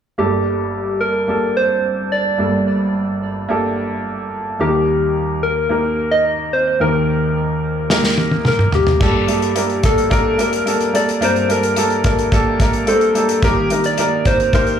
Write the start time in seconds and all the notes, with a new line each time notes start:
0.18 G1 G2 A#3 D4 G4 A4
1.01 A#4
1.28 A#3 D4 G4 A4
1.57 C5
2.12 D5
2.38 G1 G2 A#3 D4 G4 A4
3.48 A#3 D4 G4 A4
4.59 D#2 D#3 A#3 D#4 G4 A#4
5.43 A#4
5.69 A#3 D#4 G4 A#4
6.11 D#5
6.53 C5
6.80 D#2 D#3 A#3 D#4 G4 A#4
7.90 A#3 D#4 G4 A#4, snare
8.04 snare
8.18 high tom
8.31 high tom
8.45 A#4, mid tom
8.59 mid tom
8.72 G4, floor tom
8.87 floor tom
9.00 G2 A#3 D4 G4 A4, kick, crash
9.28 A#3 D4 G4 A4, closed hi-hat
9.42 closed hi-hat
9.55 A#3 D4 G4 A#4, closed hi-hat
9.70 closed hi-hat
9.83 A#3 D4 G4 A4, kick, closed hi-hat
9.98 closed hi-hat
10.10 A#3 D4 G4 A#4, kick, closed hi-hat
10.38 A#3 D4 G4 A#4, closed hi-hat
10.53 closed hi-hat
10.66 A#3 D4 G4 A4, closed hi-hat
10.80 closed hi-hat
10.93 A#3 D4 G4 A4 D5, closed hi-hat
11.09 closed hi-hat
11.21 G2 A#3 D4 G4 A#4 C5, closed hi-hat
11.36 closed hi-hat
11.49 A#3 D4 G4 A4 A#4, closed hi-hat
11.63 closed hi-hat
11.76 A#3 D4 G4 A4, closed hi-hat
11.90 closed hi-hat
12.04 A#3 D4 G4 A4 A#4, kick, closed hi-hat
12.18 closed hi-hat
12.32 A#3 D4 G4 A4, kick, closed hi-hat
12.60 A#3 D4 G4 A#4, kick, closed hi-hat
12.73 closed hi-hat
12.87 A#3 D4 G4 A4 C5, closed hi-hat
13.01 closed hi-hat
13.15 A#3 D4 G4 A4, closed hi-hat
13.29 closed hi-hat
13.42 D#3 A#3 D#4 G4 A#4, kick, closed hi-hat
13.70 A#3 D#4 G4 A#4, closed hi-hat
13.84 D5, closed hi-hat
13.97 A#3 D#4 G4 A#4, closed hi-hat
14.25 A#3 D#4 G4 A#4 C5, kick, closed hi-hat
14.40 closed hi-hat
14.53 A#3 D#4 G4 A#4 C5, kick, closed hi-hat
14.67 closed hi-hat